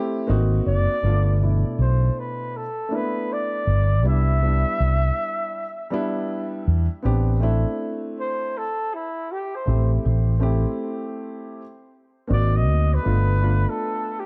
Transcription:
Already playing: grand piano A3 C4 E4 G4
0.27 fretless electric bass G#1, grand piano A#3 C4 D#4 F#4
0.66 fretless electric bass F#1, flugelhorn D5
1.02 fretless electric bass G1, grand piano A3 B3 D4 F4
1.40 grand piano B2 A3 D4 E4
1.78 fretless electric bass B1, flugelhorn C5
2.19 flugelhorn B4
2.57 flugelhorn A4
2.89 grand piano A3 A#3 D4 E4
2.95 grand piano B3, flugelhorn B4
3.33 flugelhorn D5
3.67 fretless electric bass G1
4.03 fretless electric bass C2, grand piano G3 B3 D4 E4
4.09 flugelhorn E5
4.41 grand piano G3 B3 D4 E4
4.80 fretless electric bass C2
5.90 grand piano G3 B3 D4 E4
6.67 fretless electric bass E2
7.03 fretless electric bass A1, grand piano B3 C4 D4 G4
7.40 grand piano A3 C4 D4 E4
8.20 flugelhorn C5
8.57 flugelhorn A4
8.95 flugelhorn E4
9.32 flugelhorn G4
9.56 flugelhorn C5
9.66 fretless electric bass A1, grand piano A3 C4 E4 G4
10.05 fretless electric bass A1
10.40 grand piano A3 C4 E4 G4
12.27 fretless electric bass G#1, grand piano A#3 C4 D#4 F#4
12.33 flugelhorn D5
12.56 flugelhorn D#5
12.67 fretless electric bass D2
12.94 flugelhorn B4
13.02 fretless electric bass G1, grand piano A3 B3 D4 F4
13.40 grand piano A3 B3 D4 F4
13.70 flugelhorn A4
14.20 flugelhorn G4

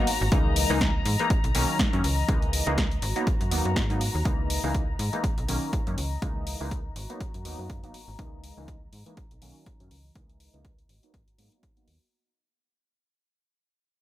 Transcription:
Already playing: string section F#4 A#5
0.07 fm bass G#1, open hi-hat
0.21 fm bass G#1
0.32 fm bass C#2, analog polysynth E3 G#3 A#3 D#4, string section E3 D#5, kick, closed hi-hat
0.56 open hi-hat
0.70 fm bass C#2, analog polysynth E3 G#3 A#3 D#4
0.81 kick, snare, closed hi-hat
1.06 fm bass G#2, open hi-hat
1.19 analog polysynth E3 G#3 A#3 D#4, closed hi-hat
1.30 fm bass B1, string section D#4, kick, closed hi-hat
1.44 fm bass B1, closed hi-hat
1.55 fm bass B1, analog polysynth D#3 F#3 A#3 C#4, open hi-hat
1.79 kick, snare, closed hi-hat
1.93 fm bass F#2, analog polysynth D#3 F#3 A#3 C#4, closed hi-hat
2.04 fm bass C#2, string section E3 D#5, open hi-hat
2.28 fm bass C#2, analog polysynth E3 G#3 A#3 D#4, kick, closed hi-hat
2.42 closed hi-hat
2.53 open hi-hat
2.67 fm bass C#2, analog polysynth E3 G#3 A#3 D#4, closed hi-hat
2.78 kick, snare, closed hi-hat
2.92 closed hi-hat
3.02 fm bass G#1, string section F#4 A#5, open hi-hat
3.16 analog polysynth F#3 A#3 B3 D#4, closed hi-hat
3.27 kick, closed hi-hat
3.41 fm bass F#2, closed hi-hat
3.51 fm bass D#2, analog polysynth F#3 A#3 B3 D#4, open hi-hat
3.65 fm bass F#2, closed hi-hat
3.76 fm bass G#2, kick, snare, closed hi-hat
3.90 analog polysynth F#3 A#3 B3 D#4, closed hi-hat
4.01 open hi-hat
4.15 fm bass D#2
4.25 fm bass C#2, analog polysynth E3 G#3 A#3 D#4, string section E3 D#5, kick, closed hi-hat
4.50 open hi-hat
4.63 fm bass C#2, analog polysynth E3 G#3 A#3 D#4
4.75 kick, closed hi-hat
4.99 fm bass G#2, open hi-hat
5.13 analog polysynth E3 G#3 A#3 D#4, closed hi-hat
5.24 fm bass B1, string section D#4, kick, closed hi-hat
5.38 fm bass B1, closed hi-hat
5.48 fm bass B1, analog polysynth D#3 F#3 A#3 C#4, open hi-hat
5.73 kick, closed hi-hat
5.87 fm bass F#2, analog polysynth D#3 F#3 A#3 C#4, closed hi-hat
5.98 fm bass C#2, string section E3 D#5 A#5, open hi-hat
6.22 fm bass C#2, analog polysynth E3 G#3 A#3 D#4, kick, closed hi-hat
6.47 open hi-hat
6.60 fm bass C#2, analog polysynth E3 G#3 A#3 D#4
6.71 kick, closed hi-hat
6.96 fm bass G#1, string section F#4, open hi-hat
7.09 analog polysynth F#3 A#3 B3 D#4, closed hi-hat
7.21 kick, closed hi-hat
7.34 fm bass F#2, closed hi-hat
7.45 fm bass D#2, analog polysynth F#3 A#3 B3 D#4, open hi-hat
7.59 fm bass F#2
7.70 kick, closed hi-hat
7.83 fm bass G#1, analog polysynth F#3 A#3 B3 D#4, closed hi-hat
7.94 fm bass G#1, open hi-hat
8.08 fm bass G#1
8.19 fm bass C#2, analog polysynth E3 G#3 A#3 D#4, string section E3 D#5, kick, closed hi-hat
8.44 open hi-hat
8.57 fm bass C#2, analog polysynth E3 G#3 A#3 D#4
8.68 kick, closed hi-hat
8.93 fm bass G#2, open hi-hat
9.06 analog polysynth E3 G#3 A#3 D#4, closed hi-hat
9.17 fm bass B1, string section D#4, kick, closed hi-hat
9.31 fm bass B1, closed hi-hat
9.41 fm bass B1, analog polysynth D#3 F#3 A#3 C#4, open hi-hat
9.66 kick, closed hi-hat
9.80 fm bass F#2, analog polysynth D#3 F#3 A#3 C#4, closed hi-hat
9.91 fm bass C#2, string section E3 D#5, open hi-hat
10.15 fm bass C#2, analog polysynth E3 G#3 A#3 D#4, kick, closed hi-hat
10.30 closed hi-hat
10.40 open hi-hat
10.54 fm bass C#2, analog polysynth E3 G#3 A#3 D#4, closed hi-hat
10.65 kick, closed hi-hat
10.79 closed hi-hat
10.89 fm bass G#1, string section F#4 A#5, open hi-hat
11.03 analog polysynth F#3 A#3 B3 D#4, closed hi-hat
11.14 fm bass G#1, kick, closed hi-hat
11.27 fm bass G#2, closed hi-hat
11.38 fm bass G#2, analog polysynth F#3 A#3 B3 D#4, open hi-hat
11.52 closed hi-hat
11.63 kick, closed hi-hat
11.77 analog polysynth F#3 A#3 B3 D#4, closed hi-hat
11.88 fm bass D#2, open hi-hat

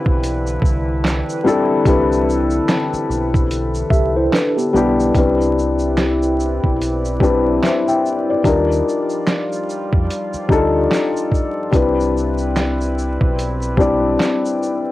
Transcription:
Already playing: ambient pad D3 E3 E4 B4, felt piano G3 C4 D4 E4 B4 D5 F5
0.06 fingered electric bass B1, kick
0.24 closed hi-hat, shaker
0.47 shaker
0.62 fingered electric bass C2, kick, shaker
1.05 snare, clap, closed hi-hat, shaker
1.29 shaker
1.44 felt piano G3 C4 D4 E4 A4, shaker
1.85 fingered electric bass C2, felt piano G3 C4 D4 E4 B4, kick, closed hi-hat, shaker
2.12 shaker
2.29 shaker
2.50 shaker
2.68 snare, clap, closed hi-hat, shaker
2.93 muted fingered electric bass stroke, shaker
3.10 fingered electric bass B1, shaker
3.34 kick, shaker
3.51 closed hi-hat, shaker
3.74 shaker
3.90 fingered electric bass C2, tine electric piano G4 E5, kick, shaker
4.17 tine electric piano E4 C5
4.33 tine electric piano D4 B4, snare, clap, closed hi-hat, shaker
4.57 tine electric piano B3 G4, shaker
4.73 fingered electric bass B1, felt piano G3 B3 D4 E4 G4, shaker
5.00 shaker
5.14 fingered electric bass C2, felt piano G3 C4 D4 E4, ambient pad C4 E4 B4 D5, kick, closed hi-hat, shaker
5.19 felt piano B4
5.41 shaker
5.59 shaker
5.79 shaker
5.97 snare, clap, closed hi-hat, shaker
6.22 shaker
6.40 shaker
6.64 fingered electric bass B1, kick
6.82 closed hi-hat, shaker
7.05 shaker
7.20 felt piano G3 C4 D4 E4 B4, kick, shaker
7.63 felt piano C5 E5, snare, clap, closed hi-hat, shaker
7.88 felt piano E5 G5, shaker
8.06 shaker
8.30 felt piano B4 D5
8.43 fingered electric bass D#2, ambient pad F3 G3 F4, felt piano G3 D4 D#4 F4 A#4, kick, closed hi-hat, shaker
8.72 shaker
8.88 shaker
9.09 shaker
9.27 snare, clap, closed hi-hat, shaker
9.52 shaker
9.69 shaker
9.93 fingered electric bass F2, kick
10.10 closed hi-hat, shaker
10.33 muted fingered electric bass stroke, shaker
10.48 fingered electric bass D2, felt piano G3 D4 D#4 F4 A4, kick, shaker
10.91 snare, clap, closed hi-hat, shaker
11.17 shaker
11.32 kick, shaker
11.71 fingered electric bass C2, felt piano G3 C4 D4 E4 B4, ambient pad C4 E4 B4, kick, closed hi-hat, shaker
12.00 shaker
12.17 shaker
12.38 shaker
12.56 snare, clap, closed hi-hat, shaker
12.81 shaker
12.99 shaker
13.21 fingered electric bass B1, kick
13.39 closed hi-hat, shaker
13.62 shaker
13.77 felt piano G3 C4 D4 E4 D5, kick, shaker
14.20 snare, clap, closed hi-hat, shaker
14.45 shaker
14.63 shaker

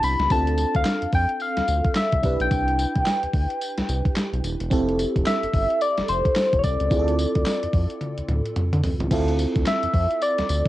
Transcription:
Already playing: fm electric piano B3 D4 E4 G4
0.03 analog synth bass C2, soft synth lead B5, open hi-hat, tambourine
0.19 analog synth bass C#2, snare, closed hi-hat
0.30 analog synth bass D2, fm electric piano C4 D4 F4 A4, soft synth lead A5, kick, closed hi-hat, tambourine
0.47 closed hi-hat
0.58 closed hi-hat, tambourine
0.75 analog synth bass D2, soft synth lead F5, kick, closed hi-hat
0.85 snare, clap, closed hi-hat, tambourine
1.02 analog synth bass F2, closed hi-hat
1.13 analog synth bass F2, soft synth lead G5, kick, open hi-hat
1.29 closed hi-hat
1.40 soft synth lead F5, closed hi-hat, tambourine
1.57 analog synth bass D2, snare, closed hi-hat
1.68 analog synth bass D2, closed hi-hat, tambourine
1.85 kick, closed hi-hat
1.95 soft synth lead E5, snare, clap, closed hi-hat, tambourine
2.12 analog synth bass C2, kick, closed hi-hat
2.23 analog synth bass C2, fm electric piano D4 E4 G4 B4, kick, closed hi-hat, tambourine
2.40 analog synth bass B1, soft synth lead G5, closed hi-hat
2.51 analog synth bass C2, kick, closed hi-hat, tambourine
2.68 closed hi-hat
2.79 closed hi-hat, tambourine
2.95 analog synth bass C2, kick, closed hi-hat
3.06 snare, clap, closed hi-hat, tambourine
3.23 analog synth bass D2, closed hi-hat
3.33 analog synth bass D2, kick, open hi-hat
3.50 closed hi-hat
3.61 closed hi-hat, tambourine
3.77 analog synth bass C2, snare, closed hi-hat
3.89 analog synth bass C2, closed hi-hat, tambourine
4.05 kick, closed hi-hat
4.16 snare, clap, closed hi-hat, tambourine
4.33 analog synth bass B1, closed hi-hat
4.44 analog synth bass D#1, closed hi-hat, tambourine
4.60 analog synth bass E1, closed hi-hat
4.70 analog synth bass F1, fm electric piano C4 E4 G4 A4, kick, closed hi-hat, tambourine
4.89 closed hi-hat
4.99 closed hi-hat, tambourine
5.16 analog synth bass F1, kick, closed hi-hat
5.26 soft synth lead E5, snare, clap, closed hi-hat, tambourine
5.43 analog synth bass G1, closed hi-hat
5.53 analog synth bass G1, kick, open hi-hat
5.70 closed hi-hat
5.81 soft synth lead D5, closed hi-hat, tambourine
5.98 analog synth bass F1, snare, closed hi-hat
6.08 analog synth bass F1, soft synth lead C5, closed hi-hat, tambourine
6.25 kick, closed hi-hat
6.35 snare, clap, closed hi-hat, tambourine
6.53 analog synth bass E1, kick, closed hi-hat
6.59 soft synth lead C#5
6.63 analog synth bass C2, soft synth lead D5, kick, closed hi-hat, tambourine
6.80 analog synth bass C#2, closed hi-hat
6.90 analog synth bass D2, fm electric piano C4 E4 F4 G#4, kick, closed hi-hat, tambourine
6.99 fm electric piano A4
7.08 closed hi-hat
7.19 closed hi-hat, tambourine
7.35 analog synth bass D2, kick, closed hi-hat
7.46 snare, clap, closed hi-hat, tambourine
7.63 analog synth bass F2, closed hi-hat
7.73 analog synth bass F2, kick, open hi-hat
7.90 closed hi-hat
8.01 closed hi-hat, high tom
8.18 analog synth bass D2, closed hi-hat
8.28 analog synth bass D2, closed hi-hat, mid tom
8.46 closed hi-hat
8.56 closed hi-hat, mid tom
8.73 analog synth bass D3, closed hi-hat, mid tom
8.84 floor tom, open hi-hat
9.00 analog synth bass C#2, closed hi-hat, floor tom
9.11 analog synth bass D2, fm electric piano C4 E4 F4 A4, kick, closed hi-hat, crash, tambourine
9.28 closed hi-hat
9.39 closed hi-hat, tambourine
9.56 analog synth bass D2, kick, closed hi-hat
9.66 soft synth lead E5, snare, clap, closed hi-hat, tambourine
9.83 analog synth bass F2, closed hi-hat
9.94 analog synth bass F2, kick, open hi-hat
10.11 closed hi-hat
10.22 soft synth lead D5, closed hi-hat, tambourine
10.38 analog synth bass D2, snare, closed hi-hat
10.49 analog synth bass D2, closed hi-hat, tambourine

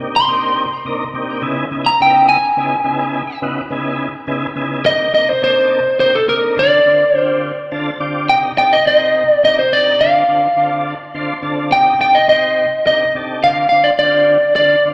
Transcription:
0.00 tonewheel organ C3 A#3 D4 D#4 G4
0.16 lead electric guitar C6
0.27 tonewheel organ C3 A#3 D4 D#4 G4
0.85 tonewheel organ C3 A#3 D4 D#4 A#4
1.13 tonewheel organ C3 A#3 D4 D#4 G4
1.41 tonewheel organ C#3 B3 D#4 E4 G#4
1.71 tonewheel organ C#3 B3 D#4 E4 G#4
1.86 lead electric guitar A#5
2.00 tonewheel organ C#3 B3 D#4 E4 A#4, lead electric guitar G5
2.29 lead electric guitar G#5
2.57 tonewheel organ C#3 B3 D#4 E4 G#4
2.84 tonewheel organ C#3 B3 D#4 E4 G#4
3.42 tonewheel organ C#3 B3 D#4 E4 F#4
3.70 tonewheel organ C#3 B3 D#4 E4 G#4
4.27 tonewheel organ C#3 B3 D#4 E4 G#4
4.55 tonewheel organ C#3 B3 D#4 E4 G#4
4.84 tonewheel organ C3 A#3 D4 D#4 G4, lead electric guitar D#5
5.13 tonewheel organ C3 A#3 D4 D#4 A#4, lead electric guitar D#5
5.29 lead electric guitar C5
5.42 tonewheel organ C3 A#3 D4 D#4 A4, lead electric guitar C5
6.00 tonewheel organ C3 A#3 D4 D#4 G4, lead electric guitar C5
6.15 lead electric guitar A4
6.28 tonewheel organ C3 A#3 D4 D#4 A#4, lead electric guitar A#4
6.57 tonewheel organ D3 C4 D4 F4 A4, lead electric guitar D5
6.86 tonewheel organ D3 C4 D4 F4 C5
7.14 tonewheel organ D3 C4 D4 F4 G4, lead electric guitar C5
7.72 tonewheel organ D3 C4 D4 F4 A4 A5
8.00 tonewheel organ D3 C4 D4 F4 G4 D5
8.29 tonewheel organ C3 D4 D#4 G4 A#4, lead electric guitar G5
8.57 tonewheel organ C3 D4 D#4 G4 A4, lead electric guitar G5
8.73 lead electric guitar D#5
8.86 tonewheel organ C3 C4 D#4 G4 A#4, lead electric guitar D#5
9.29 lead electric guitar D5
9.43 tonewheel organ C3 D4 D#4 G4 A#4, lead electric guitar D#5
9.59 lead electric guitar C5
9.72 tonewheel organ C3 D4 D#4 G4 A#4, lead electric guitar D5
10.01 tonewheel organ D3 C4 D4 F4 A4, lead electric guitar F5
10.28 tonewheel organ D3 C4 D4 F4 A4
10.57 tonewheel organ D3 C4 D4 F4 A4
11.14 tonewheel organ D3 C4 D4 F4 A4 C5
11.42 tonewheel organ D3 C4 D4 F4 A4 A5
11.71 tonewheel organ C3 D4 D#4 G4 A#4, lead electric guitar G5
11.99 tonewheel organ C3 D4 D#4 G4 A4, lead electric guitar G5
12.15 lead electric guitar D#5
12.28 tonewheel organ C3 C4 D#4 G4 C5, lead electric guitar D#5
12.86 tonewheel organ C3 D4 D#4 G4 A#4, lead electric guitar D#5
13.15 tonewheel organ C3 D4 D#4 G4 A4
13.44 tonewheel organ D3 C4 D4 F4 A4, lead electric guitar F5
13.69 tonewheel organ D3 C4 D4 F4 C5, lead electric guitar F5
13.84 lead electric guitar D5
13.99 tonewheel organ D3 C4 D4 F4 G4, lead electric guitar D5
14.56 tonewheel organ D3 C4 D4 F4 A4, lead electric guitar D5
14.85 tonewheel organ D3 C4 D4 F4 C5

